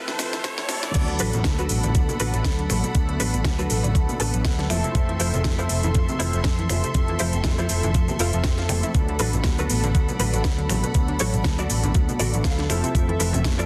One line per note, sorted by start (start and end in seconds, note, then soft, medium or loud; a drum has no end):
0.00 0.18 F3 medium
0.00 0.91 F3 medium
0.00 0.18 A3 medium
0.00 0.18 C4 medium
0.00 0.90 C4 medium
0.00 0.18 E4 medium
0.00 0.19 A4 medium
0.00 0.91 E5 medium
0.00 0.91 A5 medium
0.00 riser medium
0.08 0.15 E3 loud
0.08 snare medium
0.08 high conga medium
0.08 shaker soft
0.19 0.23 C3 medium
0.19 0.43 F3 medium
0.19 0.43 A3 medium
0.19 0.43 C4 medium
0.19 0.45 E4 medium
0.19 0.43 E4 medium
0.19 0.45 F4 medium
0.19 0.44 A4 medium
0.19 0.45 B4 loud
0.19 snare loud
0.19 open hi-hat loud
0.19 shaker medium
0.33 0.40 E3 loud
0.33 snare medium
0.33 closed hi-hat medium
0.33 shaker soft
0.44 0.48 C3 medium
0.44 0.68 F3 medium
0.44 0.68 C4 medium
0.44 0.68 E4 medium
0.44 0.69 A4 medium
0.44 kick loud
0.44 snare loud
0.44 closed hi-hat medium
0.44 shaker soft
0.58 0.65 E3 loud
0.58 snare medium
0.69 0.73 C3 medium
0.69 0.93 F3 medium
0.69 0.93 A3 medium
0.69 0.93 C4 medium
0.69 0.93 E4 medium
0.69 0.93 A4 medium
0.69 muted clean electric guitar stroke soft
0.69 snare loud
0.69 open hi-hat loud
0.69 high conga medium
0.69 shaker medium
0.83 0.90 E3 loud
0.83 snare loud
0.83 closed hi-hat soft
0.83 shaker soft
0.94 1.16 D2 loud
0.94 0.98 B2 medium
0.94 2.17 F#3 medium
0.94 2.17 A3 medium
0.94 2.17 B3 medium
0.94 2.17 D4 medium
0.94 4.66 D4 medium
0.94 13.66 A4 medium
0.94 2.18 A4 medium
0.94 4.66 F#5 medium
0.94 4.66 B5 medium
0.94 kick loud
0.94 closed hi-hat medium
0.94 crash loud
0.94 shaker soft
1.08 1.15 D3 loud
1.08 closed hi-hat soft
1.19 1.32 A1 medium
1.19 1.28 F#3 medium
1.19 1.34 D4 loud
1.19 1.34 F#4 loud
1.19 1.34 A4 loud
1.19 1.34 B4 loud
1.19 open hi-hat loud
1.19 shaker medium
1.33 1.43 A1 loud
1.33 1.38 B2 medium
1.33 closed hi-hat medium
1.33 low conga medium
1.33 shaker soft
1.44 1.66 D2 loud
1.44 1.50 D3 medium
1.44 muted clean electric guitar stroke soft
1.44 kick loud
1.44 snare loud
1.44 closed hi-hat medium
1.44 high conga medium
1.44 shaker soft
1.59 1.63 F#3 loud
1.59 1.89 D4 medium
1.59 1.89 F#4 medium
1.59 1.89 A4 medium
1.59 1.89 B4 medium
1.59 closed hi-hat soft
1.59 shaker soft
1.69 1.81 A1 medium
1.69 1.75 B2 medium
1.69 open hi-hat loud
1.69 shaker medium
1.83 1.93 A1 loud
1.83 1.88 D3 loud
1.83 closed hi-hat medium
1.83 low conga medium
1.83 shaker soft
1.95 2.06 D2 medium
1.95 1.98 F#3 medium
1.95 kick loud
1.95 closed hi-hat medium
1.95 shaker soft
2.09 2.15 B2 loud
2.09 closed hi-hat soft
2.09 high conga medium
2.09 shaker soft
2.19 2.31 A1 medium
2.19 2.28 D3 medium
2.19 2.92 F#3 medium
2.19 2.92 A3 medium
2.19 2.92 B3 medium
2.19 2.92 D4 medium
2.19 2.45 D4 loud
2.19 2.45 F#4 medium
2.19 2.45 A4 loud
2.19 2.93 A4 medium
2.19 2.45 B4 loud
2.19 open hi-hat loud
2.19 shaker medium
2.34 2.43 A1 medium
2.34 2.38 F#3 medium
2.34 closed hi-hat medium
2.34 shaker soft
2.44 2.66 D2 medium
2.44 2.50 B2 medium
2.44 kick loud
2.44 snare loud
2.44 closed hi-hat medium
2.44 shaker soft
2.59 2.63 D3 loud
2.59 closed hi-hat soft
2.70 2.81 A1 medium
2.70 2.73 F#3 loud
2.70 finger snap medium
2.70 muted clean electric guitar stroke medium
2.70 open hi-hat loud
2.70 high conga medium
2.70 shaker medium
2.84 2.88 B2 loud
2.84 muted clean electric guitar stroke soft
2.84 closed hi-hat medium
2.84 shaker soft
2.94 3.16 D2 loud
2.94 2.98 B2 medium
2.94 4.67 F#3 medium
2.94 4.67 A3 medium
2.94 4.67 B3 medium
2.94 4.67 D4 medium
2.94 4.68 A4 medium
2.94 kick loud
2.94 closed hi-hat medium
2.94 shaker soft
3.09 3.15 D3 loud
3.09 closed hi-hat soft
3.20 3.31 A1 medium
3.20 3.28 F#3 medium
3.20 3.34 D4 loud
3.20 3.34 F#4 medium
3.20 3.34 A4 loud
3.20 3.34 B4 loud
3.20 open hi-hat loud
3.20 shaker medium
3.34 3.43 A1 loud
3.34 3.38 B2 medium
3.34 closed hi-hat medium
3.34 shaker soft
3.44 3.66 D2 loud
3.44 3.51 D3 medium
3.44 kick loud
3.44 snare loud
3.44 closed hi-hat medium
3.44 high conga medium
3.44 shaker soft
3.59 3.63 F#3 loud
3.59 3.89 D4 medium
3.59 3.89 F#4 medium
3.59 3.89 A4 medium
3.59 3.89 B4 medium
3.59 closed hi-hat soft
3.59 shaker soft
3.70 3.81 A1 medium
3.70 3.75 B2 medium
3.70 open hi-hat loud
3.70 shaker medium
3.84 3.93 A1 medium
3.84 3.88 D3 loud
3.84 closed hi-hat medium
3.84 low conga medium
3.84 shaker soft
3.95 4.06 D2 medium
3.95 3.98 F#3 medium
3.95 kick loud
3.95 closed hi-hat medium
3.95 shaker soft
4.09 4.15 B2 loud
4.09 closed hi-hat soft
4.09 high conga medium
4.09 shaker soft
4.20 4.31 A1 medium
4.20 4.28 D3 medium
4.20 4.45 D4 medium
4.20 4.45 F#4 medium
4.20 4.45 A4 loud
4.20 4.45 B4 loud
4.20 4.43 A5 medium
4.20 open hi-hat loud
4.20 shaker medium
4.34 4.43 A1 loud
4.34 4.38 F#3 medium
4.34 closed hi-hat medium
4.34 shaker soft
4.45 4.66 D2 medium
4.45 4.50 B2 medium
4.45 4.68 F#5 medium
4.45 kick loud
4.45 snare loud
4.45 closed hi-hat medium
4.45 shaker soft
4.59 4.63 D3 loud
4.59 snare soft
4.59 closed hi-hat soft
4.69 4.81 F1 medium
4.69 4.92 F3 medium
4.69 4.73 F3 loud
4.69 4.92 A3 medium
4.69 4.92 C4 medium
4.69 5.11 E4 medium
4.69 4.92 E4 medium
4.69 5.11 F4 medium
4.69 4.92 A4 loud
4.69 5.11 A4 medium
4.69 5.11 C5 loud
4.69 4.93 E5 medium
4.69 8.91 E5 medium
4.69 8.91 C6 medium
4.69 finger snap medium
4.69 open hi-hat loud
4.69 high conga medium
4.69 shaker medium
4.84 4.88 C3 loud
4.84 closed hi-hat medium
4.84 shaker soft
4.94 5.16 F2 loud
4.94 4.98 C3 medium
4.94 6.17 F3 medium
4.94 6.17 A3 medium
4.94 6.17 C4 medium
4.94 6.18 A4 medium
4.94 kick loud
4.94 closed hi-hat soft
4.94 shaker soft
5.09 5.15 E3 loud
5.09 closed hi-hat soft
5.20 5.31 F1 medium
5.20 5.28 F3 medium
5.20 5.34 E4 loud
5.20 5.34 F4 medium
5.20 5.34 A4 loud
5.20 5.34 C5 loud
5.20 open hi-hat loud
5.20 shaker medium
5.34 5.43 F1 loud
5.34 5.38 C3 medium
5.34 closed hi-hat medium
5.34 low conga medium
5.34 shaker soft
5.44 5.66 F2 loud
5.44 5.50 E3 medium
5.44 kick loud
5.44 snare loud
5.44 closed hi-hat medium
5.44 high conga medium
5.44 shaker soft
5.58 5.63 F3 loud
5.58 5.89 E4 medium
5.58 5.89 F4 medium
5.58 5.89 A4 medium
5.58 5.89 C5 loud
5.58 closed hi-hat soft
5.58 shaker soft
5.69 5.81 F1 medium
5.69 5.75 C3 medium
5.69 open hi-hat loud
5.69 shaker medium
5.83 5.93 F1 loud
5.83 5.88 E3 loud
5.83 closed hi-hat medium
5.83 low conga medium
5.83 shaker soft
5.94 6.06 F2 medium
5.94 5.98 F3 medium
5.94 kick loud
5.94 closed hi-hat medium
5.94 shaker soft
6.09 6.16 C3 loud
6.09 closed hi-hat soft
6.09 high conga medium
6.09 shaker soft
6.19 6.31 F1 medium
6.19 6.28 E3 medium
6.19 6.92 F3 medium
6.19 6.92 A3 medium
6.19 6.92 C4 medium
6.19 6.45 E4 loud
6.19 6.45 F4 medium
6.19 6.45 A4 loud
6.19 6.93 A4 medium
6.19 6.45 C5 loud
6.19 6.92 E5 medium
6.19 open hi-hat loud
6.19 shaker medium
6.33 6.43 F1 loud
6.33 6.38 F3 medium
6.33 closed hi-hat medium
6.33 shaker soft
6.44 6.66 F2 medium
6.44 6.50 C3 medium
6.44 kick loud
6.44 snare loud
6.44 closed hi-hat medium
6.44 shaker soft
6.59 6.63 E3 loud
6.59 closed hi-hat soft
6.70 6.81 F1 medium
6.70 6.73 F3 loud
6.70 finger snap medium
6.70 muted clean electric guitar stroke medium
6.70 open hi-hat loud
6.70 high conga loud
6.70 shaker medium
6.84 6.88 C3 loud
6.84 muted clean electric guitar stroke soft
6.84 closed hi-hat soft
6.84 shaker soft
6.94 7.16 F2 loud
6.94 6.98 C3 medium
6.94 8.67 F3 medium
6.94 8.67 A3 medium
6.94 8.67 C4 medium
6.94 8.68 A4 medium
6.94 8.67 E5 medium
6.94 kick loud
6.94 closed hi-hat soft
6.94 shaker soft
7.08 7.16 E3 loud
7.08 closed hi-hat soft
7.19 7.31 F1 medium
7.19 7.28 F3 medium
7.19 7.34 E4 loud
7.19 7.34 F4 medium
7.19 7.34 A4 loud
7.19 7.34 C5 loud
7.19 open hi-hat loud
7.19 shaker medium
7.33 7.42 F1 loud
7.33 7.38 C3 medium
7.33 closed hi-hat soft
7.33 shaker soft
7.44 7.66 F2 loud
7.44 7.51 E3 medium
7.44 muted clean electric guitar stroke soft
7.44 kick loud
7.44 snare loud
7.44 closed hi-hat medium
7.44 high conga loud
7.44 shaker soft
7.58 7.63 F3 loud
7.58 7.89 E4 medium
7.58 7.89 F4 medium
7.58 7.89 A4 medium
7.58 7.89 C5 medium
7.58 closed hi-hat soft
7.58 shaker soft
7.69 7.81 F1 medium
7.69 7.75 C3 medium
7.69 open hi-hat loud
7.69 shaker medium
7.83 7.93 F1 loud
7.83 7.88 E3 loud
7.83 closed hi-hat soft
7.83 low conga medium
7.83 shaker soft
7.94 8.06 F2 medium
7.94 7.98 F3 medium
7.94 kick loud
7.94 closed hi-hat medium
7.94 shaker soft
8.08 8.15 C3 loud
8.08 closed hi-hat soft
8.08 high conga medium
8.08 shaker soft
8.19 8.31 F1 medium
8.19 8.45 E4 loud
8.19 8.26 F4 loud
8.19 8.45 F4 medium
8.19 8.45 A4 medium
8.19 8.45 C5 loud
8.19 open hi-hat loud
8.19 shaker medium
8.33 8.43 F1 medium
8.33 8.38 F3 loud
8.33 closed hi-hat medium
8.33 shaker soft
8.44 8.66 F2 medium
8.44 8.53 C4 medium
8.44 kick loud
8.44 snare loud
8.44 closed hi-hat soft
8.44 shaker soft
8.58 8.63 F3 loud
8.58 snare soft
8.58 closed hi-hat soft
8.69 8.81 F1 medium
8.69 8.73 C3 loud
8.69 8.92 F3 medium
8.69 8.92 A3 medium
8.69 8.92 C4 medium
8.69 8.92 E4 medium
8.69 8.92 A4 medium
8.69 finger snap medium
8.69 muted clean electric guitar stroke medium
8.69 open hi-hat loud
8.69 high conga medium
8.69 shaker medium
8.83 8.88 E4 loud
8.83 muted clean electric guitar stroke soft
8.83 closed hi-hat soft
8.83 shaker soft
8.94 9.16 D2 loud
8.94 8.98 B2 medium
8.94 10.16 F#3 medium
8.94 10.17 A3 medium
8.94 10.17 B3 medium
8.94 12.66 D4 medium
8.94 10.17 D4 medium
8.94 10.18 A4 medium
8.94 12.66 F#5 medium
8.94 12.66 B5 medium
8.94 kick loud
8.94 closed hi-hat soft
8.94 shaker soft
9.08 9.15 D3 loud
9.08 closed hi-hat soft
9.19 9.31 A1 medium
9.19 9.28 F#3 medium
9.19 9.34 D4 loud
9.19 9.34 F#4 loud
9.19 9.34 A4 loud
9.19 9.34 B4 loud
9.19 open hi-hat loud
9.19 shaker medium
9.33 9.43 A1 loud
9.33 9.38 B2 medium
9.33 closed hi-hat soft
9.33 low conga medium
9.33 shaker soft
9.44 9.66 D2 loud
9.44 9.50 D3 medium
9.44 muted clean electric guitar stroke soft
9.44 kick loud
9.44 snare loud
9.44 closed hi-hat soft
9.44 high conga medium
9.44 shaker soft
9.58 9.63 F#3 loud
9.58 9.89 D4 medium
9.58 9.89 F#4 medium
9.58 9.90 A4 medium
9.58 9.89 B4 loud
9.58 closed hi-hat soft
9.58 shaker soft
9.70 9.81 A1 medium
9.70 9.76 B2 medium
9.70 open hi-hat loud
9.70 shaker medium
9.84 9.93 A1 medium
9.84 9.88 D3 loud
9.84 closed hi-hat soft
9.84 low conga medium
9.84 shaker soft
9.95 10.06 D2 medium
9.95 9.98 F#3 medium
9.95 kick loud
9.95 closed hi-hat medium
9.95 shaker soft
10.09 10.15 B2 loud
10.09 closed hi-hat soft
10.09 high conga medium
10.09 shaker soft
10.18 10.31 A1 medium
10.18 10.28 D3 medium
10.18 10.91 F#3 medium
10.18 10.92 A3 medium
10.18 10.92 B3 medium
10.18 10.92 D4 medium
10.18 10.45 D4 loud
10.18 10.45 F#4 medium
10.18 10.45 A4 medium
10.18 10.92 A4 medium
10.18 10.45 B4 loud
10.18 open hi-hat loud
10.18 shaker medium
10.33 10.43 A1 loud
10.33 10.38 F#3 medium
10.33 closed hi-hat medium
10.33 shaker soft
10.44 10.66 D2 medium
10.44 10.50 B2 medium
10.44 kick loud
10.44 snare loud
10.44 closed hi-hat soft
10.44 shaker soft
10.58 10.63 D3 loud
10.58 closed hi-hat soft
10.69 10.81 A1 medium
10.69 10.73 F#3 loud
10.69 finger snap medium
10.69 muted clean electric guitar stroke medium
10.69 open hi-hat loud
10.69 high conga medium
10.69 shaker medium
10.83 10.88 B2 loud
10.83 muted clean electric guitar stroke soft
10.83 closed hi-hat medium
10.83 shaker soft
10.94 11.16 D2 loud
10.94 10.98 B2 medium
10.94 12.67 B3 medium
10.94 12.67 D4 medium
10.94 12.68 A4 medium
10.94 kick loud
10.94 closed hi-hat medium
10.94 shaker soft
11.08 11.15 D3 loud
11.08 closed hi-hat soft
11.19 11.31 A1 medium
11.19 11.28 F#3 medium
11.19 11.34 D4 loud
11.19 11.34 F#4 medium
11.19 11.34 A4 loud
11.19 11.34 C#5 loud
11.19 open hi-hat loud
11.19 shaker medium
11.34 11.43 A1 loud
11.34 11.38 B2 medium
11.34 closed hi-hat medium
11.34 shaker soft
11.44 11.66 D2 loud
11.44 11.50 D3 medium
11.44 kick loud
11.44 snare loud
11.44 closed hi-hat medium
11.44 high conga loud
11.44 shaker soft
11.59 11.63 F#3 loud
11.59 11.89 D4 medium
11.59 11.90 F#4 medium
11.59 11.90 A4 medium
11.59 11.90 D5 medium
11.59 closed hi-hat soft
11.59 shaker soft
11.70 11.81 A1 medium
11.70 11.76 B2 medium
11.70 open hi-hat loud
11.70 shaker medium
11.83 11.93 A1 loud
11.83 11.88 D3 loud
11.83 closed hi-hat medium
11.83 low conga medium
11.83 shaker soft
11.94 12.06 D2 medium
11.94 11.98 F#3 medium
11.94 kick loud
11.94 closed hi-hat medium
11.94 shaker soft
12.09 12.16 B2 loud
12.09 closed hi-hat soft
12.09 high conga medium
12.09 shaker soft
12.19 12.31 A1 medium
12.19 12.28 D3 medium
12.19 12.45 D4 loud
12.19 12.45 F#4 loud
12.19 12.45 A4 loud
12.19 12.44 D5 loud
12.19 open hi-hat loud
12.19 shaker medium
12.34 12.43 A1 loud
12.34 12.38 F#3 medium
12.34 closed hi-hat medium
12.34 shaker soft
12.44 12.66 D2 medium
12.44 12.51 B2 medium
12.44 12.69 F5 medium
12.44 kick loud
12.44 snare loud
12.44 closed hi-hat medium
12.44 shaker soft
12.58 12.63 D3 loud
12.58 snare soft
12.58 closed hi-hat soft
12.69 12.81 F1 medium
12.69 12.92 F3 medium
12.69 12.73 F3 loud
12.69 12.92 A3 medium
12.69 12.92 C4 medium
12.69 13.11 E4 medium
12.69 12.92 E4 medium
12.69 13.11 F4 medium
12.69 13.11 A4 medium
12.69 12.92 A4 loud
12.69 13.11 C5 loud
12.69 13.66 E5 medium
12.69 finger snap medium
12.69 open hi-hat loud
12.69 high conga medium
12.69 shaker medium
12.84 12.88 C3 loud
12.84 closed hi-hat medium
12.84 shaker soft
12.94 13.16 F2 loud
12.94 12.98 C3 medium
12.94 13.66 F3 medium
12.94 13.66 A3 medium
12.94 13.66 C4 medium
12.94 13.66 A4 medium
12.94 kick loud
12.94 closed hi-hat medium
12.94 shaker soft
13.09 13.15 E3 loud
13.09 closed hi-hat soft
13.19 13.31 F1 medium
13.19 13.28 F3 medium
13.19 13.34 E4 loud
13.19 13.34 F4 medium
13.19 13.34 A4 medium
13.19 13.34 B4 loud
13.19 open hi-hat loud
13.19 shaker medium
13.33 13.43 F1 loud
13.33 13.38 C3 medium
13.33 closed hi-hat medium
13.33 low conga medium
13.33 shaker soft
13.44 13.66 F2 loud
13.44 13.50 E3 medium
13.44 muted clean electric guitar stroke soft
13.44 kick loud
13.44 snare loud
13.44 closed hi-hat medium
13.44 high conga loud
13.44 shaker soft
13.58 13.63 F3 loud
13.58 13.66 E4 medium
13.58 13.66 F4 medium
13.58 13.66 A4 medium
13.58 13.66 D5 medium
13.58 closed hi-hat soft
13.58 shaker soft